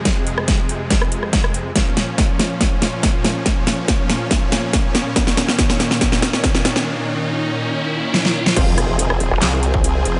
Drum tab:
CC |----------------|----------------|----------------|----------------|
HH |x-x-x-x-x-x-x-x-|x-x-x-x-x-x-x-x-|x-x-x-x-x-x-x-x-|x-x-x-x-x-x-x-x-|
CP |----------------|----------------|----------------|----------------|
SD |o--ro---or-ror--|o-o-o-o-o-o-o-o-|o-o-o-o-o-o-o-o-|oooooooooooooooo|
BD |o---o---o---o---|o---o---o---o---|o---o---o---o---|o---o---o---o---|

CC |----------------|x---------------|
HH |----------------|x-x-x-x-x-x-x-x-|
CP |----------------|--------x-------|
SD |------------oo-o|--r--r-ro-------|
BD |----------------|o----------o----|